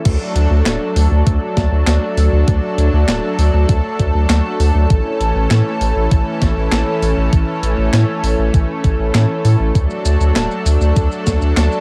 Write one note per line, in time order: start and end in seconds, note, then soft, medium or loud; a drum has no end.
0.05 0.17 D2 loud
0.05 4.86 F#3 medium
0.05 11.80 A3 medium
0.05 4.86 D4 medium
0.05 9.71 A4 loud
0.05 kick loud
0.05 closed hi-hat loud
0.05 crash loud
0.36 0.47 D2 medium
0.36 closed hi-hat medium
0.51 0.62 D2 medium
0.66 0.77 D1 loud
0.66 snare loud
0.66 clap loud
0.66 closed hi-hat loud
0.96 1.07 D2 medium
0.96 open hi-hat medium
1.11 1.23 D2 medium
1.27 1.38 D2 loud
1.27 kick loud
1.27 closed hi-hat loud
1.57 1.68 D2 medium
1.57 kick medium
1.57 snare medium
1.57 closed hi-hat medium
1.72 1.83 D2 medium
1.87 1.98 D2 loud
1.87 snare loud
1.87 clap loud
1.87 closed hi-hat loud
2.17 2.29 D2 medium
2.17 open hi-hat medium
2.33 2.44 D2 medium
2.48 2.59 D2 loud
2.48 kick loud
2.48 closed hi-hat medium
2.78 2.89 D2 loud
2.78 closed hi-hat medium
2.93 3.05 D2 medium
3.08 3.20 D1 loud
3.08 snare loud
3.08 clap loud
3.08 closed hi-hat loud
3.39 3.50 D2 loud
3.39 open hi-hat medium
3.54 3.65 D2 medium
3.69 3.80 D2 loud
3.69 kick loud
3.69 closed hi-hat loud
3.99 4.11 D2 medium
3.99 kick medium
3.99 closed hi-hat medium
4.15 4.26 D2 medium
4.30 4.41 D2 loud
4.30 snare loud
4.30 clap loud
4.30 closed hi-hat loud
4.60 4.71 D2 medium
4.60 open hi-hat medium
4.75 4.86 D2 medium
4.90 5.02 A1 loud
4.90 9.71 E3 medium
4.90 9.71 C#4 medium
4.90 kick loud
4.90 closed hi-hat medium
5.21 5.32 A1 loud
5.21 closed hi-hat medium
5.36 5.47 A1 medium
5.51 5.62 A2 loud
5.51 snare loud
5.51 clap loud
5.51 closed hi-hat loud
5.81 5.92 A1 medium
5.81 open hi-hat medium
5.96 6.08 A1 medium
6.11 6.23 A1 loud
6.11 kick loud
6.11 closed hi-hat loud
6.42 6.53 A1 medium
6.42 kick medium
6.42 snare medium
6.42 closed hi-hat medium
6.57 6.68 A1 medium
6.72 6.83 A1 loud
6.72 snare loud
6.72 clap loud
6.72 closed hi-hat medium
7.02 7.14 A1 medium
7.02 open hi-hat medium
7.18 7.29 A1 medium
7.33 7.44 A1 loud
7.33 kick loud
7.33 closed hi-hat medium
7.63 7.74 A1 loud
7.63 closed hi-hat medium
7.78 7.89 A1 medium
7.93 8.04 A2 loud
7.93 snare loud
7.93 clap medium
7.93 closed hi-hat medium
8.23 8.35 A1 loud
8.23 open hi-hat medium
8.39 8.50 A1 medium
8.54 8.65 A1 loud
8.54 kick loud
8.54 closed hi-hat medium
8.84 8.96 A1 loud
8.84 kick medium
8.84 closed hi-hat medium
9.00 9.11 A1 medium
9.15 9.26 A2 loud
9.15 snare loud
9.15 clap medium
9.15 closed hi-hat medium
9.45 9.56 A2 medium
9.45 open hi-hat medium
9.60 9.71 A1 medium
9.75 9.86 D2 loud
9.75 11.80 F#3 medium
9.75 11.80 D4 medium
9.75 11.80 A4 medium
9.75 kick loud
9.75 closed hi-hat medium
9.75 shaker soft
9.90 shaker soft
10.05 10.17 D2 loud
10.05 closed hi-hat medium
10.05 shaker medium
10.21 10.32 D2 medium
10.21 shaker soft
10.36 10.47 D1 loud
10.36 snare loud
10.36 clap medium
10.36 closed hi-hat medium
10.36 shaker soft
10.51 shaker soft
10.66 10.77 D2 loud
10.66 open hi-hat medium
10.66 shaker medium
10.81 10.92 D2 medium
10.81 shaker soft
10.96 11.08 D2 loud
10.96 kick loud
10.96 closed hi-hat medium
10.96 shaker soft
11.12 shaker soft
11.27 11.38 D2 medium
11.27 kick medium
11.27 snare medium
11.27 closed hi-hat medium
11.27 shaker medium
11.42 11.53 D2 medium
11.42 shaker soft
11.57 11.68 D2 loud
11.57 snare loud
11.57 clap loud
11.57 closed hi-hat medium
11.57 shaker soft
11.72 shaker soft